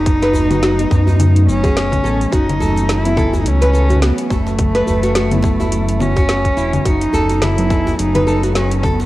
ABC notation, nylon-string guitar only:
X:1
M:4/4
L:1/16
Q:"Swing 16ths" 1/4=106
K:F#dor
V:1 name="Nylon-string guitar"
z B2 F F z2 D4 G z2 A z | F z A4 A z2 B A F F z A z | z B2 F F z2 E4 F3 E z | F z A4 A z2 B A F F z A z |]